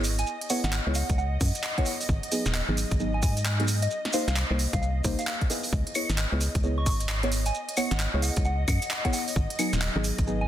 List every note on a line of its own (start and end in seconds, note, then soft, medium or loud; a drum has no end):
0.00 0.24 G#1 medium
0.00 5.72 D#5 medium
0.00 maracas medium
0.04 open hi-hat loud
0.19 0.28 G#5 medium
0.19 closed hi-hat medium
0.19 maracas medium
0.27 maracas soft
0.41 closed hi-hat medium
0.50 0.61 B3 medium
0.50 0.61 E4 medium
0.50 0.61 G#4 medium
0.50 0.61 C#5 medium
0.50 0.59 F#5 medium
0.50 open hi-hat loud
0.50 maracas medium
0.64 0.81 G#1 loud
0.64 0.70 F#5 medium
0.64 snare medium
0.64 closed hi-hat medium
0.64 maracas medium
0.73 clap loud
0.73 maracas soft
0.87 1.03 C#2 loud
0.87 0.99 B3 medium
0.87 0.99 E4 medium
0.87 0.99 G#4 medium
0.87 0.99 C#5 medium
0.94 1.16 F#5 medium
0.94 open hi-hat loud
0.94 maracas medium
1.09 1.38 C#2 loud
1.09 kick loud
1.09 closed hi-hat medium
1.09 maracas medium
1.18 1.75 F#5 medium
1.18 maracas soft
1.41 1.52 F#2 loud
1.41 kick loud
1.41 open hi-hat loud
1.41 maracas loud
1.55 closed hi-hat medium
1.55 maracas medium
1.63 clap loud
1.63 maracas soft
1.78 1.89 B3 medium
1.78 1.89 E4 medium
1.78 1.89 G#4 medium
1.78 1.89 C#5 medium
1.78 1.83 F#5 medium
1.78 kick medium
1.78 closed hi-hat soft
1.85 1.95 F#5 medium
1.85 open hi-hat loud
1.85 maracas medium
2.01 open hi-hat medium
2.01 maracas medium
2.09 2.20 G#1 loud
2.09 kick loud
2.09 maracas soft
2.23 closed hi-hat medium
2.32 2.48 F#3 medium
2.32 2.48 B3 medium
2.32 2.48 D#4 medium
2.32 2.48 G#4 medium
2.32 open hi-hat loud
2.32 maracas medium
2.45 2.62 D#1 loud
2.45 snare medium
2.45 closed hi-hat medium
2.45 maracas medium
2.54 clap loud
2.54 maracas soft
2.69 2.85 G#1 loud
2.69 2.80 F#3 medium
2.69 2.80 B3 medium
2.69 2.80 D#4 medium
2.69 2.80 G#4 medium
2.77 open hi-hat loud
2.77 maracas medium
2.91 3.24 G#1 loud
2.91 kick loud
2.91 closed hi-hat medium
2.91 maracas medium
3.00 3.11 F#3 medium
3.00 3.11 B3 medium
3.00 3.11 D#4 medium
3.00 3.11 G#4 medium
3.00 maracas soft
3.14 3.20 G#5 medium
3.22 3.88 G#2 medium
3.22 3.32 G#5 medium
3.22 kick loud
3.22 open hi-hat loud
3.22 maracas loud
3.37 closed hi-hat medium
3.37 maracas medium
3.45 clap loud
3.45 maracas soft
3.59 3.66 F#3 medium
3.59 3.66 B3 medium
3.59 3.66 D#4 medium
3.59 3.66 G#4 loud
3.59 closed hi-hat soft
3.68 open hi-hat loud
3.68 maracas loud
3.82 3.92 D#5 medium
3.82 closed hi-hat medium
3.82 maracas medium
3.91 maracas soft
4.05 snare medium
4.05 closed hi-hat medium
4.13 4.24 A#3 medium
4.13 4.24 D#4 medium
4.13 4.24 G4 medium
4.13 4.24 C5 medium
4.13 4.23 F5 medium
4.13 open hi-hat medium
4.13 maracas loud
4.28 4.44 C2 medium
4.28 4.33 F5 medium
4.28 snare medium
4.28 closed hi-hat medium
4.28 maracas medium
4.36 clap loud
4.36 maracas soft
4.51 4.67 C2 loud
4.51 4.62 A#3 medium
4.51 4.62 D#4 medium
4.51 4.62 G4 medium
4.51 4.62 C5 medium
4.59 open hi-hat loud
4.59 maracas medium
4.73 5.01 C2 loud
4.73 4.79 F5 medium
4.73 kick loud
4.73 closed hi-hat medium
4.73 maracas medium
4.82 4.91 F5 medium
4.82 maracas soft
5.04 5.16 C2 medium
5.04 5.21 A#3 loud
5.04 5.21 D#4 medium
5.04 5.21 G4 medium
5.04 5.21 C5 loud
5.04 kick loud
5.04 open hi-hat medium
5.04 maracas loud
5.19 5.24 F5 medium
5.19 closed hi-hat medium
5.19 maracas medium
5.27 5.36 F5 medium
5.27 clap loud
5.41 kick medium
5.41 closed hi-hat soft
5.50 5.93 B3 loud
5.50 5.93 E4 medium
5.50 5.93 G#4 medium
5.50 5.93 D#5 loud
5.50 open hi-hat medium
5.50 maracas medium
5.63 open hi-hat medium
5.63 maracas medium
5.73 5.84 C#2 loud
5.73 10.48 D#5 medium
5.73 kick loud
5.73 maracas soft
5.87 closed hi-hat medium
5.95 6.11 B3 medium
5.95 6.11 E4 medium
5.95 6.11 G#4 medium
5.95 6.12 C#5 medium
5.95 open hi-hat medium
5.95 claves medium
5.95 maracas medium
6.09 6.26 G#1 loud
6.09 snare medium
6.09 closed hi-hat medium
6.09 maracas medium
6.18 clap loud
6.18 maracas soft
6.32 6.49 C#2 loud
6.32 6.44 B3 medium
6.32 6.44 E4 medium
6.32 6.44 G#4 medium
6.32 6.44 C#5 medium
6.41 open hi-hat loud
6.41 maracas medium
6.55 6.88 C#2 loud
6.55 kick loud
6.55 closed hi-hat medium
6.55 maracas soft
6.63 6.74 B3 medium
6.63 6.74 E4 medium
6.63 6.74 G#4 medium
6.63 6.74 C#5 medium
6.63 maracas soft
6.78 6.83 C#6 medium
6.86 7.51 G#1 medium
6.86 6.95 C#6 medium
6.86 kick loud
6.86 open hi-hat loud
6.86 maracas medium
7.00 closed hi-hat medium
7.00 maracas soft
7.09 clap loud
7.09 maracas soft
7.23 7.30 B3 medium
7.23 7.30 E4 medium
7.23 7.30 G#4 medium
7.23 7.30 C#5 loud
7.23 closed hi-hat medium
7.32 open hi-hat loud
7.32 maracas medium
7.46 7.56 G#5 medium
7.46 closed hi-hat medium
7.46 maracas medium
7.54 maracas soft
7.69 closed hi-hat medium
7.77 7.88 B3 medium
7.77 7.88 E4 medium
7.77 7.88 G#4 medium
7.77 7.88 C#5 medium
7.77 7.86 F#5 medium
7.77 open hi-hat loud
7.77 claves medium
7.77 maracas medium
7.91 8.08 G#1 medium
7.91 7.97 F#5 medium
7.91 snare medium
7.91 closed hi-hat medium
7.91 maracas soft
8.00 clap loud
8.00 maracas soft
8.14 8.31 C#2 loud
8.14 8.26 B3 medium
8.14 8.26 E4 medium
8.14 8.26 G#4 medium
8.14 8.26 C#5 medium
8.22 8.44 F#5 medium
8.22 open hi-hat loud
8.22 maracas medium
8.36 8.65 C#2 loud
8.36 kick loud
8.36 closed hi-hat medium
8.36 maracas soft
8.45 9.02 F#5 medium
8.45 maracas soft
8.68 8.79 F#2 loud
8.68 kick loud
8.68 open hi-hat loud
8.68 claves medium
8.68 maracas medium
8.82 closed hi-hat medium
8.82 maracas soft
8.91 clap loud
8.91 maracas soft
9.05 9.17 B3 medium
9.05 9.17 E4 medium
9.05 9.17 G#4 medium
9.05 9.17 C#5 medium
9.05 9.10 F#5 medium
9.05 kick medium
9.05 closed hi-hat medium
9.13 9.23 F#5 medium
9.13 open hi-hat loud
9.13 maracas medium
9.28 open hi-hat medium
9.28 maracas medium
9.36 9.47 G#1 loud
9.36 kick loud
9.36 maracas soft
9.50 closed hi-hat medium
9.59 9.75 F#3 medium
9.59 9.75 B3 medium
9.59 9.75 D#4 medium
9.59 9.75 G#4 medium
9.59 open hi-hat loud
9.59 claves medium
9.59 maracas medium
9.73 9.90 D#1 loud
9.73 snare medium
9.73 closed hi-hat medium
9.73 maracas medium
9.81 clap loud
9.81 maracas soft
9.96 10.12 G#1 loud
9.96 10.08 F#3 medium
9.96 10.08 B3 medium
9.96 10.08 D#4 medium
9.96 10.08 G#4 loud
10.04 open hi-hat loud
10.04 maracas medium
10.18 10.48 G#1 medium
10.18 kick loud
10.18 closed hi-hat medium
10.18 maracas soft
10.27 10.38 F#3 medium
10.27 10.38 B3 medium
10.27 10.38 D#4 medium
10.27 10.38 G#4 medium
10.27 maracas soft
10.41 10.47 G#5 medium